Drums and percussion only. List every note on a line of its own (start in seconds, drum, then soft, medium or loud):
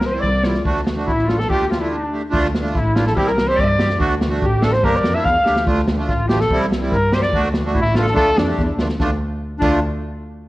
0.01 snare medium
0.23 kick medium
0.23 snare soft
0.34 snare soft
0.44 snare medium
0.54 snare medium
0.65 kick medium
0.76 snare soft
0.87 snare loud
0.97 snare soft
1.08 kick medium
1.08 snare soft
1.19 snare soft
1.29 snare medium
1.40 snare medium
1.50 kick medium
1.62 snare soft
1.72 snare medium
2.34 kick medium
2.45 snare soft
2.55 snare medium
2.66 snare soft
2.75 kick medium
2.75 snare soft
2.96 snare medium
3.07 snare medium
3.17 kick medium
3.27 snare soft
3.38 snare loud
3.49 snare soft
3.59 kick medium
3.59 snare soft
3.79 snare loud
3.90 snare medium
4.00 kick medium
4.21 snare medium
4.42 kick medium
4.62 snare loud
4.73 snare medium
4.84 kick medium
4.94 snare soft
5.04 snare loud
5.26 kick medium
5.26 snare soft
5.46 snare medium
5.56 snare medium
5.67 kick medium
5.78 snare soft
5.88 snare loud
6.09 kick medium
6.09 snare soft
6.29 snare loud
6.40 snare medium
6.50 kick medium
6.61 snare soft
6.72 snare medium
6.92 kick medium
6.92 snare soft
7.12 snare medium
7.22 snare medium
7.33 kick medium
7.44 snare soft
7.54 snare loud
7.75 kick medium
7.75 snare soft
7.86 snare soft
7.95 snare medium
8.07 snare medium
8.17 kick medium
8.38 snare loud
8.58 kick medium
8.58 snare soft
8.79 snare medium
8.89 snare medium
9.00 kick medium
9.00 snare medium
9.62 kick medium
9.62 crash medium